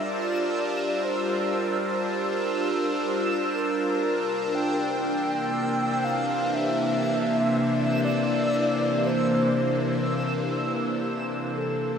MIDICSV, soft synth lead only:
0, 0, Header, 1, 2, 480
1, 0, Start_track
1, 0, Tempo, 500000
1, 11505, End_track
2, 0, Start_track
2, 0, Title_t, "Soft synth lead"
2, 0, Program_c, 0, 80
2, 36, Note_on_c, 0, 74, 112
2, 1006, Note_on_c, 0, 72, 86
2, 1020, Note_off_c, 0, 74, 0
2, 1965, Note_off_c, 0, 72, 0
2, 3399, Note_on_c, 0, 70, 103
2, 4364, Note_on_c, 0, 79, 127
2, 4378, Note_off_c, 0, 70, 0
2, 5800, Note_on_c, 0, 77, 109
2, 5815, Note_off_c, 0, 79, 0
2, 6278, Note_on_c, 0, 76, 126
2, 6292, Note_off_c, 0, 77, 0
2, 7719, Note_off_c, 0, 76, 0
2, 7725, Note_on_c, 0, 74, 113
2, 8702, Note_on_c, 0, 72, 90
2, 8717, Note_off_c, 0, 74, 0
2, 10133, Note_off_c, 0, 72, 0
2, 11083, Note_on_c, 0, 69, 109
2, 11505, Note_off_c, 0, 69, 0
2, 11505, End_track
0, 0, End_of_file